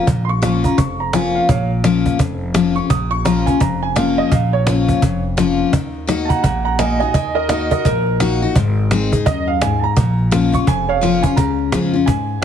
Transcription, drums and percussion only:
0.07 cajon bass loud
0.29 cajon slap soft
0.43 cajon slap loud
0.64 cajon bass medium
0.78 cajon bass loud
1.00 cajon slap soft
1.13 cajon slap loud
1.49 cajon bass loud
1.70 cajon slap soft
1.84 cajon slap loud
2.06 cajon bass medium
2.19 cajon bass loud
2.41 cajon slap soft
2.54 cajon slap loud
2.76 cajon slap soft
2.90 cajon bass loud
3.12 cajon slap soft
3.26 cajon slap loud
3.47 cajon bass medium
3.61 cajon bass loud
3.82 cajon slap soft
3.96 cajon slap loud
4.18 cajon slap soft
4.32 cajon bass loud
4.53 cajon slap soft
4.67 cajon slap loud
4.88 cajon bass medium
5.02 cajon bass loud
5.24 cajon slap soft
5.38 cajon slap loud
5.59 cajon slap soft
5.73 cajon bass loud
5.95 cajon slap soft
6.09 cajon slap loud
6.30 cajon bass medium
6.44 cajon bass loud
6.65 cajon slap soft
6.79 cajon slap loud
7.01 cajon slap soft
7.14 cajon bass loud
7.35 cajon slap soft
7.49 cajon slap loud
7.71 cajon bass medium
7.85 cajon bass loud
8.07 cajon slap soft
8.20 cajon slap loud
8.42 cajon slap soft
8.56 cajon bass loud
8.77 cajon slap soft
8.91 cajon slap loud
9.12 cajon bass medium
9.26 cajon bass loud
9.48 cajon slap soft
9.61 cajon slap loud
9.83 cajon slap soft
9.97 cajon bass loud
10.18 cajon slap soft
10.32 cajon slap loud
10.54 cajon bass medium
10.67 cajon bass loud
10.89 cajon slap soft
11.03 cajon slap medium
11.24 cajon bass medium
11.37 cajon bass loud
11.59 cajon slap soft
11.72 cajon slap loud
11.94 cajon slap soft
12.08 cajon bass loud
12.29 cajon slap soft

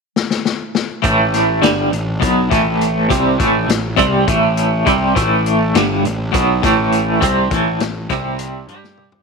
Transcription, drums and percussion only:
0.16 snare medium
0.30 snare medium
0.45 snare medium
0.75 snare medium
1.04 kick loud
1.04 closed hi-hat medium
1.34 snare soft
1.34 closed hi-hat medium
1.63 snare loud
1.63 closed hi-hat medium
1.93 closed hi-hat medium
2.22 kick loud
2.22 closed hi-hat loud
2.51 kick loud
2.51 snare soft
2.51 closed hi-hat medium
2.81 closed hi-hat medium
3.10 kick loud
3.10 closed hi-hat medium
3.40 kick loud
3.40 closed hi-hat medium
3.69 snare loud
3.69 closed hi-hat loud
3.98 kick loud
3.98 closed hi-hat medium
4.28 kick loud
4.28 closed hi-hat medium
4.57 closed hi-hat medium
4.87 kick loud
4.87 closed hi-hat medium
5.16 kick medium
5.16 closed hi-hat medium
5.46 closed hi-hat medium
5.75 snare loud
5.75 closed hi-hat medium
6.05 closed hi-hat medium
6.34 kick loud
6.34 closed hi-hat medium
6.63 kick loud
6.63 snare soft
6.63 closed hi-hat medium
6.92 closed hi-hat medium
7.22 kick loud
7.22 closed hi-hat loud
7.51 kick loud
7.51 closed hi-hat medium
7.80 snare loud
7.80 closed hi-hat medium
8.10 kick loud
8.10 snare soft
8.10 closed hi-hat medium
8.39 closed hi-hat loud
8.68 closed hi-hat medium
8.84 snare medium
8.97 mid tom medium
9.12 floor tom loud

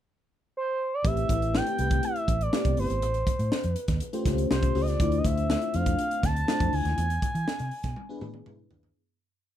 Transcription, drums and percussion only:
1.05 kick loud
1.05 closed hi-hat medium
1.17 closed hi-hat soft
1.29 kick medium
1.29 closed hi-hat medium
1.42 closed hi-hat soft
1.55 snare loud
1.67 closed hi-hat medium
1.79 closed hi-hat medium
1.90 kick medium
1.90 closed hi-hat soft
2.03 closed hi-hat medium
2.16 closed hi-hat soft
2.28 kick medium
2.28 closed hi-hat medium
2.41 closed hi-hat soft
2.53 snare loud
2.65 kick medium
2.65 closed hi-hat medium
2.77 open hi-hat medium
2.90 closed hi-hat soft
3.02 closed hi-hat medium
3.14 closed hi-hat soft
3.27 kick medium
3.27 closed hi-hat medium
3.39 closed hi-hat soft
3.52 snare medium
3.64 closed hi-hat medium
3.76 closed hi-hat medium
3.88 kick medium
3.88 snare soft
3.88 closed hi-hat medium
4.00 closed hi-hat medium
4.13 closed hi-hat soft
4.25 kick medium
4.25 snare soft
4.25 closed hi-hat medium
4.38 closed hi-hat soft
4.51 snare medium
4.63 kick medium
4.63 closed hi-hat medium
4.75 open hi-hat medium
4.88 snare soft
4.88 closed hi-hat soft
5.00 kick loud
5.00 closed hi-hat medium
5.12 closed hi-hat soft
5.25 kick medium
5.25 closed hi-hat medium
5.37 closed hi-hat soft
5.50 snare loud
5.62 closed hi-hat medium
5.74 closed hi-hat medium
5.86 kick medium
5.86 closed hi-hat medium
5.99 closed hi-hat medium
6.11 closed hi-hat soft
6.23 kick medium
6.23 snare soft
6.23 closed hi-hat medium
6.36 closed hi-hat soft
6.48 snare loud
6.60 kick medium
6.60 closed hi-hat soft
6.73 open hi-hat medium
6.85 snare soft
6.85 closed hi-hat soft
6.98 closed hi-hat medium
7.10 closed hi-hat soft
7.22 kick medium
7.22 closed hi-hat medium
7.35 closed hi-hat soft
7.48 snare loud
7.59 snare soft
7.59 closed hi-hat medium
7.71 open hi-hat medium
7.83 kick medium
7.83 snare soft
7.83 closed hi-hat medium
7.96 high tom soft
8.21 mid tom medium
8.34 mid tom medium
8.46 mid tom medium
8.71 floor tom medium
8.83 floor tom medium

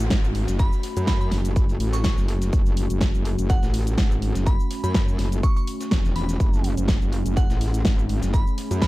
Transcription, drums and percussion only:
0.10 kick loud
0.10 snare loud
0.10 closed hi-hat medium
0.10 shaker medium
0.24 shaker soft
0.35 closed hi-hat medium
0.35 open hi-hat medium
0.48 snare medium
0.48 closed hi-hat medium
0.48 shaker medium
0.59 kick loud
0.59 closed hi-hat medium
0.59 shaker medium
0.72 shaker soft
0.83 snare soft
0.83 closed hi-hat medium
0.83 open hi-hat loud
0.97 closed hi-hat medium
0.97 shaker medium
1.07 kick loud
1.07 snare loud
1.07 closed hi-hat medium
1.07 shaker medium
1.21 shaker soft
1.31 snare medium
1.31 snare soft
1.31 closed hi-hat medium
1.31 open hi-hat loud
1.45 closed hi-hat medium
1.45 shaker medium
1.56 kick loud
1.56 closed hi-hat medium
1.56 shaker medium
1.69 closed hi-hat soft
1.69 shaker soft
1.80 closed hi-hat medium
1.80 open hi-hat loud
1.93 snare medium
1.93 closed hi-hat medium
1.93 shaker medium
2.04 kick loud
2.04 snare loud
2.04 closed hi-hat medium
2.04 shaker medium
2.18 snare soft
2.18 shaker soft
2.29 snare soft
2.29 closed hi-hat medium
2.29 open hi-hat medium
2.42 snare soft
2.42 closed hi-hat medium
2.42 shaker medium
2.53 kick loud
2.53 closed hi-hat medium
2.53 shaker medium
2.66 closed hi-hat soft
2.66 shaker soft
2.77 closed hi-hat medium
2.77 open hi-hat loud
2.90 closed hi-hat medium
2.90 shaker medium
3.01 kick loud
3.01 snare loud
3.01 closed hi-hat medium
3.01 shaker medium
3.14 shaker soft
3.25 closed hi-hat medium
3.25 open hi-hat loud
3.39 closed hi-hat medium
3.39 shaker medium
3.50 kick loud
3.50 closed hi-hat medium
3.50 shaker medium
3.63 snare medium
3.63 shaker soft
3.74 open hi-hat loud
3.74 open hi-hat medium
3.87 closed hi-hat medium
3.87 shaker medium
3.98 kick loud
3.98 snare loud
3.98 closed hi-hat medium
3.98 shaker medium
4.11 shaker soft
4.22 closed hi-hat medium
4.22 open hi-hat loud
4.35 snare medium
4.35 closed hi-hat medium
4.35 shaker medium
4.46 kick loud
4.46 closed hi-hat medium
4.46 shaker medium
4.60 shaker soft
4.71 snare soft
4.71 closed hi-hat medium
4.71 open hi-hat loud
4.84 closed hi-hat medium
4.84 shaker medium
4.94 kick loud
4.94 snare loud
4.94 closed hi-hat medium
4.94 shaker medium
5.08 shaker soft
5.19 snare medium
5.19 snare soft
5.19 closed hi-hat medium
5.19 open hi-hat loud
5.32 closed hi-hat medium
5.32 shaker medium
5.43 kick loud
5.43 closed hi-hat soft
5.43 closed hi-hat medium
5.43 shaker medium
5.56 closed hi-hat soft
5.56 shaker soft
5.67 closed hi-hat medium
5.67 open hi-hat loud
5.81 snare medium
5.81 closed hi-hat medium
5.81 shaker medium
5.91 kick loud
5.91 snare loud
5.91 closed hi-hat medium
5.91 shaker medium
6.05 snare soft
6.05 shaker soft
6.16 snare soft
6.16 closed hi-hat medium
6.16 open hi-hat medium
6.29 snare soft
6.29 closed hi-hat medium
6.29 shaker medium
6.40 kick loud
6.40 closed hi-hat soft
6.40 closed hi-hat medium
6.40 shaker medium
6.53 closed hi-hat soft
6.53 shaker soft
6.64 closed hi-hat medium
6.64 open hi-hat loud
6.77 closed hi-hat medium
6.77 shaker medium
6.88 kick loud
6.88 snare loud
6.88 closed hi-hat soft
6.88 closed hi-hat medium
6.88 shaker medium
7.02 shaker soft
7.13 closed hi-hat medium
7.13 open hi-hat medium
7.26 closed hi-hat medium
7.26 shaker medium
7.37 kick loud
7.37 closed hi-hat medium
7.37 shaker medium
7.50 snare medium
7.50 shaker soft
7.61 open hi-hat loud
7.61 open hi-hat medium
7.74 closed hi-hat medium
7.74 shaker medium
7.85 kick loud
7.85 snare loud
7.85 closed hi-hat medium
7.85 shaker medium
7.99 shaker soft
8.09 closed hi-hat medium
8.09 open hi-hat medium
8.23 snare medium
8.23 closed hi-hat medium
8.23 shaker medium
8.34 kick loud
8.34 closed hi-hat medium
8.34 shaker medium
8.47 shaker soft
8.58 snare soft
8.58 closed hi-hat medium
8.58 open hi-hat loud
8.71 closed hi-hat medium
8.71 shaker medium
8.82 kick loud
8.82 snare loud
8.82 closed hi-hat medium
8.82 shaker medium

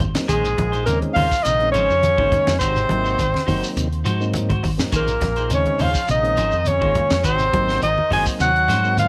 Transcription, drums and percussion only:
0.00 kick medium
0.00 low conga medium
0.00 shekere soft
0.15 snare medium
0.15 high conga loud
0.15 shekere medium
0.29 kick medium
0.29 closed hi-hat medium
0.29 shekere medium
0.45 closed hi-hat soft
0.45 shekere medium
0.58 kick medium
0.58 closed hi-hat medium
0.58 high conga medium
0.73 closed hi-hat soft
0.73 shekere soft
0.86 closed hi-hat medium
0.86 high conga soft
0.86 shekere medium
1.02 closed hi-hat soft
1.02 high conga medium
1.16 open hi-hat medium
1.16 high conga medium
1.16 low conga medium
1.16 shekere soft
1.32 kick medium
1.32 shekere medium
1.45 closed hi-hat medium
1.45 high conga soft
1.45 shekere medium
1.60 closed hi-hat soft
1.74 closed hi-hat medium
1.74 shekere medium
1.90 shekere soft
2.03 closed hi-hat medium
2.03 high conga medium
2.03 shekere medium
2.18 kick medium
2.18 high conga medium
2.32 kick medium
2.32 closed hi-hat medium
2.32 low conga medium
2.32 shekere soft
2.47 snare medium
2.47 closed hi-hat soft
2.47 high conga loud
2.47 shekere medium
2.60 kick loud
2.60 closed hi-hat medium
2.60 shekere medium
2.76 closed hi-hat soft
2.76 shekere medium
2.89 closed hi-hat medium
2.89 high conga medium
3.05 shekere soft
3.18 kick medium
3.18 closed hi-hat medium
3.18 high conga soft
3.18 shekere medium
3.34 snare soft
3.34 high conga medium
3.48 open hi-hat medium
3.48 high conga medium
3.48 low conga medium
3.48 shekere soft
3.64 shekere medium
3.77 closed hi-hat medium
3.77 high conga soft
3.77 shekere medium
3.92 closed hi-hat soft
4.05 closed hi-hat medium
4.05 shekere medium
4.21 shekere soft
4.34 closed hi-hat medium
4.34 high conga medium
4.34 shekere medium
4.50 kick medium
4.50 closed hi-hat soft
4.50 high conga medium
4.63 kick medium
4.63 open hi-hat medium
4.63 low conga medium
4.63 shekere soft
4.79 snare medium
4.79 low conga medium
4.79 shekere medium
4.92 kick loud
4.92 closed hi-hat medium
4.92 high conga soft
4.92 shekere medium
5.08 closed hi-hat soft
5.08 shekere medium
5.21 kick medium
5.21 snare soft
5.21 closed hi-hat medium
5.21 high conga medium
5.21 low conga medium
5.36 closed hi-hat soft
5.36 shekere soft
5.50 closed hi-hat medium
5.50 high conga soft
5.50 shekere medium
5.66 closed hi-hat soft
5.66 high conga medium
5.79 open hi-hat medium
5.79 low conga medium
5.79 shekere soft
5.95 kick medium
5.95 shekere medium
6.08 closed hi-hat medium
6.08 high conga soft
6.08 shekere medium
6.25 closed hi-hat soft
6.37 closed hi-hat medium
6.37 shekere medium
6.51 shekere soft
6.65 closed hi-hat medium
6.65 high conga medium
6.65 shekere medium
6.82 kick medium
6.82 high conga medium
6.95 kick medium
6.95 closed hi-hat medium
6.95 low conga medium
6.95 shekere soft
7.10 snare medium
7.10 closed hi-hat soft
7.10 high conga loud
7.10 shekere medium
7.24 kick loud
7.24 closed hi-hat medium
7.24 shekere medium
7.39 closed hi-hat soft
7.39 shekere medium
7.53 kick medium
7.53 closed hi-hat soft
7.53 high conga medium
7.53 low conga medium
7.68 snare soft
7.68 shekere soft
7.82 closed hi-hat medium
7.82 high conga soft
7.82 shekere medium
7.98 high conga medium
8.11 open hi-hat medium
8.11 low conga medium
8.11 shekere soft
8.26 kick medium
8.26 shekere medium
8.40 closed hi-hat medium
8.40 high conga soft
8.40 shekere medium
8.56 closed hi-hat soft
8.68 snare soft
8.68 closed hi-hat medium
8.68 low conga medium
8.68 shekere medium
8.84 shekere soft
8.97 closed hi-hat medium
8.97 high conga medium
8.97 shekere loud

